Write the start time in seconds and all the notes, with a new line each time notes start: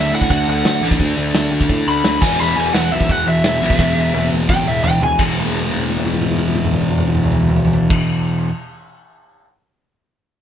Already playing: D3 A3 D4 E5
0.13 A2 F#5
0.21 kick
0.30 D2 F#5, kick, open hi-hat
0.48 D2 F#5
0.65 D2, snare, open hi-hat
0.81 A1 D3 A3 D4
0.91 kick
0.99 D2, kick, open hi-hat
1.17 D2
1.34 D2, snare, open hi-hat
1.52 D2
1.61 kick
1.69 A2, kick, open hi-hat
1.87 D2 B5
2.04 D2, snare, open hi-hat
2.22 E1 E2 B2 E3 G#5, kick, crash
2.40 E1 B5
2.57 E1 G#5
2.73 E1 F#5, snare, open hi-hat
2.92 B1 E5
3.01 kick
3.09 E1 F#5, kick, open hi-hat
3.27 E1 E5
3.44 E1, snare, open hi-hat
3.62 B1 E2 B2 E3
3.70 kick
3.79 E1, kick, snare
3.97 E1
4.14 E1, high tom
4.31 E1, high tom
4.49 B1 G5, kick, mid tom
4.68 E1 E5
4.84 E1 G5, floor tom
5.01 E1 G#5, floor tom
5.18 E1 E2 B2, kick, crash
5.23 E3
5.37 high tom
5.45 high tom
5.54 high tom
5.63 high tom
5.71 high tom
5.80 high tom
5.88 high tom
5.97 high tom
6.05 mid tom
6.14 mid tom
6.22 mid tom
6.30 mid tom
6.39 mid tom
6.47 mid tom
6.56 mid tom
6.64 mid tom
6.72 mid tom
6.81 mid tom
6.89 mid tom
6.98 mid tom
7.07 mid tom
7.15 mid tom
7.23 floor tom
7.32 floor tom
7.40 floor tom
7.49 floor tom
7.56 floor tom
7.65 floor tom
7.73 floor tom
7.90 kick, crash